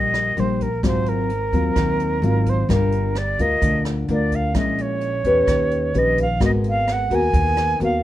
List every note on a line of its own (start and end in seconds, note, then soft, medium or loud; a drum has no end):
0.00 0.34 A#1 medium
0.00 0.81 A#2 soft
0.00 0.34 G3 medium
0.00 0.34 A#3 medium
0.00 0.41 D#5 medium
0.14 cross-stick medium
0.14 closed hi-hat soft
0.37 0.80 A#1 medium
0.37 0.67 G3 medium
0.37 0.67 A#3 soft
0.37 0.67 D4 soft
0.37 0.64 C5 medium
0.37 closed hi-hat soft
0.60 0.84 A#4 medium
0.60 kick soft
0.60 closed hi-hat soft
0.83 1.49 G#1 medium
0.83 1.74 G#2 medium
0.83 1.29 F#3 soft
0.83 1.30 C4 medium
0.83 1.30 F4 medium
0.83 1.10 C5 medium
0.83 kick medium
0.83 cross-stick medium
0.83 closed hi-hat medium
1.06 2.51 A#4 medium
1.06 closed hi-hat soft
1.29 closed hi-hat soft
1.52 1.74 D#2 medium
1.52 2.19 F#3 medium
1.52 2.19 C4 medium
1.52 2.19 F4 medium
1.52 kick soft
1.52 closed hi-hat soft
1.76 2.19 D#2 medium
1.76 2.67 D#3 medium
1.76 kick medium
1.76 cross-stick medium
1.76 closed hi-hat medium
2.00 closed hi-hat soft
2.22 2.65 G#1 medium
2.22 2.65 F#3 medium
2.22 2.66 C4 medium
2.22 2.66 F4 medium
2.22 closed hi-hat soft
2.46 2.71 C5 medium
2.46 kick soft
2.46 closed hi-hat soft
2.69 3.34 G1 medium
2.69 3.59 G3 medium
2.69 3.15 D4 medium
2.69 3.15 F4 soft
2.69 3.15 A#4 medium
2.69 3.20 A#4 medium
2.69 kick medium
2.69 cross-stick medium
2.69 closed hi-hat medium
2.92 closed hi-hat soft
3.15 3.43 D5 medium
3.15 cross-stick medium
3.15 closed hi-hat soft
3.38 3.60 D2 medium
3.38 4.05 F4 medium
3.38 4.05 A#4 medium
3.38 3.83 D#5 medium
3.38 kick soft
3.38 closed hi-hat soft
3.62 4.05 D2 medium
3.62 4.53 D3 medium
3.62 kick medium
3.62 closed hi-hat medium
3.85 cross-stick medium
3.85 closed hi-hat soft
4.08 4.52 D2 medium
4.08 4.52 D4 medium
4.08 4.52 F4 medium
4.08 4.52 A#4 medium
4.08 closed hi-hat soft
4.12 4.37 D5 medium
4.32 4.57 F5 medium
4.32 kick soft
4.32 closed hi-hat soft
4.54 5.20 A#1 medium
4.54 5.46 A#2 medium
4.54 5.21 G#3 soft
4.54 5.21 C#4 medium
4.54 5.21 E4 medium
4.54 kick medium
4.54 cross-stick medium
4.54 closed hi-hat medium
4.58 4.83 D#5 medium
4.78 6.00 C#5 medium
4.78 closed hi-hat soft
5.01 closed hi-hat soft
5.24 5.46 E2 medium
5.24 5.91 C#4 medium
5.24 5.91 G4 medium
5.24 5.91 B4 medium
5.24 kick soft
5.24 closed hi-hat soft
5.47 5.91 D#2 medium
5.47 6.39 D#3 soft
5.47 kick medium
5.47 cross-stick medium
5.47 closed hi-hat medium
5.71 closed hi-hat soft
5.94 6.37 A#1 medium
5.94 6.24 C#4 soft
5.94 6.24 G4 medium
5.94 6.25 B4 medium
5.94 closed hi-hat soft
5.98 6.19 D#5 medium
6.17 kick soft
6.17 closed hi-hat soft
6.22 6.41 F5 medium
6.40 7.06 G#1 medium
6.40 7.31 G#3 medium
6.40 7.06 B3 medium
6.40 7.07 F#4 medium
6.40 7.07 A#4 medium
6.40 kick medium
6.40 cross-stick medium
6.40 closed hi-hat medium
6.45 6.51 D#5 medium
6.64 closed hi-hat soft
6.69 6.94 F5 medium
6.87 cross-stick medium
6.87 closed hi-hat soft
6.92 7.16 F#5 medium
7.10 7.32 D#2 medium
7.10 7.76 B3 medium
7.10 7.77 F#4 medium
7.10 7.77 A#4 medium
7.10 kick soft
7.10 closed hi-hat soft
7.15 7.82 G#5 loud
7.33 7.77 D#2 medium
7.33 8.03 D#3 soft
7.33 kick medium
7.33 closed hi-hat medium
7.57 cross-stick medium
7.57 closed hi-hat soft
7.80 8.03 D#2 medium
7.80 8.03 B3 medium
7.80 8.03 F#4 medium
7.80 8.03 A#4 medium
7.80 8.03 F5 medium
7.80 closed hi-hat soft